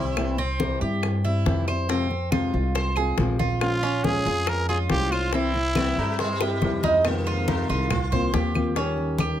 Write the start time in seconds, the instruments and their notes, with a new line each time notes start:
Already playing: upright bass C2, nylon-string guitar G3 C4 E4, sitar C4, cuban tres E4
0.16 nylon-string guitar C3 E3 G3 C4 E4, high bongo, high conga, claves
0.38 cuban tres C4, muted nylon-string guitar stroke, high conga
0.60 nylon-string guitar C3 E3 G3 C4 E4, high bongo, high conga
0.81 upright bass G2, nylon-string guitar G3 C4 E4, cuban tres G4, high conga
1.03 high bongo, high conga, claves
1.25 nylon-string guitar G3 C4 E4, cuban tres E4, high conga
1.45 upright bass F2, nylon-string guitar C3 E3 G3 C4 E4, high bongo, low bongo, high conga
1.67 nylon-string guitar G3 C4 E4, cuban tres C5, claves
1.89 nylon-string guitar C3 F3 G#3 C4 F4, cuban tres C4, high bongo, high conga
2.09 muted nylon-string guitar stroke, high bongo, high conga
2.31 nylon-string guitar C3 F3 G#3 C4 F4, cuban tres F4, high bongo, high conga, claves
2.53 upright bass C2, nylon-string guitar G#3 C4 F4, high conga
2.75 cuban tres C5, high bongo, high conga
2.96 nylon-string guitar G#3 C4 F4, cuban tres G#4, high bongo, high conga, claves
3.17 upright bass A#1, nylon-string guitar C3 F3 G#3 C4 F4, high bongo, low bongo, high conga
3.39 nylon-string guitar G#3 C4, cuban tres F4, high bongo, high conga
3.61 nylon-string guitar F3 G#3 C#4 F4, trumpet F4, high bongo, high conga, claves
3.83 cuban tres C#4, muted nylon-string guitar stroke, high conga
4.04 nylon-string guitar F3 G#3 C#4 F4, trumpet G#4, high bongo, high conga
4.25 upright bass F2, nylon-string guitar G#3 C#4 F4, cuban tres G#4, high conga
4.47 trumpet A#4, high bongo, high conga, claves
4.69 nylon-string guitar G#3 C#4 F4, cuban tres F4, trumpet G#4, high conga
4.90 upright bass C2, nylon-string guitar F3 G#3 C#4 F4, trumpet G4, high bongo, low bongo, high conga
5.11 nylon-string guitar G#3 C#4 F4, trumpet F4, cuban tres C5, claves
5.33 nylon-string guitar C3 E3 G3 C4 E4, cuban tres C4, trumpet E4, high bongo, high conga
5.54 muted nylon-string guitar stroke, high bongo, high conga
5.75 nylon-string guitar C3 E3 G3 C4 E4, sitar A#3, cuban tres E4, high bongo, high conga, claves
5.97 upright bass G2, nylon-string guitar G3 C4 E4, sitar G#3, high conga
6.19 sitar G3, cuban tres C5, high bongo, high conga
6.41 nylon-string guitar G3 C4 E4, cuban tres G4, high bongo, high conga, claves
6.61 upright bass F2, nylon-string guitar C3 E3 G3 C4 E4, high bongo, high conga
6.83 nylon-string guitar G3 C4 E4, cuban tres D#4, low bongo, high conga
7.05 nylon-string guitar C3 D#3 G#3 C4 F4, sitar A#3, high bongo, high conga, claves
7.26 cuban tres F4, high conga
7.48 sitar G#3, high bongo, high conga
7.69 upright bass C2, cuban tres F4, high bongo, high conga
7.91 sitar F4, muted nylon-string guitar stroke, high bongo, high conga, low conga, claves
8.12 nylon-string guitar F3 A#3 C4 F4, cuban tres C5, high bongo, high conga, low conga
8.33 upright bass D#2, nylon-string guitar F3 A#3 C4 F4, cuban tres G4, high bongo, low bongo, high conga
8.55 nylon-string guitar F3 A#3 C4 F4, high bongo, high conga, claves
8.76 nylon-string guitar D#3 G3 C#4 G4, cuban tres C#4, high bongo, high conga
8.98 high conga
9.19 cuban tres G4, high bongo, high conga, claves